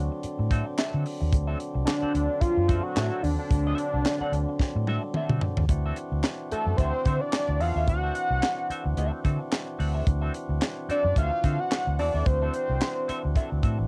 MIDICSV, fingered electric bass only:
0, 0, Header, 1, 3, 480
1, 0, Start_track
1, 0, Tempo, 546946
1, 1164, Time_signature, 4, 2, 24, 8
1, 12177, End_track
2, 0, Start_track
2, 0, Title_t, "Fingered electric bass"
2, 0, Program_c, 0, 33
2, 344, Note_on_c, 0, 45, 91
2, 533, Note_off_c, 0, 45, 0
2, 825, Note_on_c, 0, 50, 95
2, 906, Note_off_c, 0, 50, 0
2, 1065, Note_on_c, 0, 39, 90
2, 1146, Note_off_c, 0, 39, 0
2, 1165, Note_on_c, 0, 38, 117
2, 1355, Note_off_c, 0, 38, 0
2, 1536, Note_on_c, 0, 36, 95
2, 1620, Note_off_c, 0, 36, 0
2, 1884, Note_on_c, 0, 38, 83
2, 1990, Note_off_c, 0, 38, 0
2, 2257, Note_on_c, 0, 42, 85
2, 2446, Note_off_c, 0, 42, 0
2, 2602, Note_on_c, 0, 45, 100
2, 2708, Note_off_c, 0, 45, 0
2, 2840, Note_on_c, 0, 39, 111
2, 2946, Note_off_c, 0, 39, 0
2, 3080, Note_on_c, 0, 38, 111
2, 3269, Note_off_c, 0, 38, 0
2, 3456, Note_on_c, 0, 36, 89
2, 3538, Note_off_c, 0, 36, 0
2, 3793, Note_on_c, 0, 38, 73
2, 3901, Note_off_c, 0, 38, 0
2, 4173, Note_on_c, 0, 45, 86
2, 4362, Note_off_c, 0, 45, 0
2, 4647, Note_on_c, 0, 50, 93
2, 4732, Note_off_c, 0, 50, 0
2, 4888, Note_on_c, 0, 39, 92
2, 4972, Note_off_c, 0, 39, 0
2, 4993, Note_on_c, 0, 38, 106
2, 5184, Note_off_c, 0, 38, 0
2, 5368, Note_on_c, 0, 38, 81
2, 5452, Note_off_c, 0, 38, 0
2, 5848, Note_on_c, 0, 42, 78
2, 5932, Note_off_c, 0, 42, 0
2, 5952, Note_on_c, 0, 38, 98
2, 6059, Note_off_c, 0, 38, 0
2, 6195, Note_on_c, 0, 50, 94
2, 6301, Note_off_c, 0, 50, 0
2, 6569, Note_on_c, 0, 38, 95
2, 6670, Note_off_c, 0, 38, 0
2, 6670, Note_on_c, 0, 40, 86
2, 6778, Note_off_c, 0, 40, 0
2, 6808, Note_on_c, 0, 39, 87
2, 6915, Note_off_c, 0, 39, 0
2, 6915, Note_on_c, 0, 38, 111
2, 7106, Note_off_c, 0, 38, 0
2, 7287, Note_on_c, 0, 36, 87
2, 7372, Note_off_c, 0, 36, 0
2, 7770, Note_on_c, 0, 38, 95
2, 7854, Note_off_c, 0, 38, 0
2, 7874, Note_on_c, 0, 38, 99
2, 7982, Note_off_c, 0, 38, 0
2, 8115, Note_on_c, 0, 50, 90
2, 8223, Note_off_c, 0, 50, 0
2, 8598, Note_on_c, 0, 38, 99
2, 8789, Note_off_c, 0, 38, 0
2, 8837, Note_on_c, 0, 38, 102
2, 9028, Note_off_c, 0, 38, 0
2, 9206, Note_on_c, 0, 38, 83
2, 9293, Note_off_c, 0, 38, 0
2, 9693, Note_on_c, 0, 42, 99
2, 9778, Note_off_c, 0, 42, 0
2, 9798, Note_on_c, 0, 38, 84
2, 9906, Note_off_c, 0, 38, 0
2, 10039, Note_on_c, 0, 50, 102
2, 10147, Note_off_c, 0, 50, 0
2, 10417, Note_on_c, 0, 38, 86
2, 10521, Note_off_c, 0, 38, 0
2, 10521, Note_on_c, 0, 40, 83
2, 10628, Note_off_c, 0, 40, 0
2, 10654, Note_on_c, 0, 39, 84
2, 10739, Note_off_c, 0, 39, 0
2, 10763, Note_on_c, 0, 38, 95
2, 10954, Note_off_c, 0, 38, 0
2, 11139, Note_on_c, 0, 36, 93
2, 11222, Note_off_c, 0, 36, 0
2, 11626, Note_on_c, 0, 38, 93
2, 11707, Note_off_c, 0, 38, 0
2, 11865, Note_on_c, 0, 38, 77
2, 11947, Note_off_c, 0, 38, 0
2, 11966, Note_on_c, 0, 45, 100
2, 12072, Note_off_c, 0, 45, 0
2, 12103, Note_on_c, 0, 33, 83
2, 12177, Note_off_c, 0, 33, 0
2, 12177, End_track
3, 0, Start_track
3, 0, Title_t, "Muted fingered electric bass strokes"
3, 211, Note_on_c, 9, 29, 43
3, 299, Note_off_c, 9, 29, 0
3, 1777, Note_on_c, 9, 29, 46
3, 1865, Note_off_c, 9, 29, 0
3, 2120, Note_on_c, 9, 29, 49
3, 2208, Note_off_c, 9, 29, 0
3, 3692, Note_on_c, 9, 29, 46
3, 3780, Note_off_c, 9, 29, 0
3, 4035, Note_on_c, 9, 29, 48
3, 4122, Note_off_c, 9, 29, 0
3, 5720, Note_on_c, 9, 29, 37
3, 5808, Note_off_c, 9, 29, 0
3, 7632, Note_on_c, 9, 29, 45
3, 7720, Note_off_c, 9, 29, 0
3, 9554, Note_on_c, 9, 29, 40
3, 9642, Note_off_c, 9, 29, 0
3, 11488, Note_on_c, 9, 29, 41
3, 11576, Note_off_c, 9, 29, 0
3, 12177, End_track
0, 0, End_of_file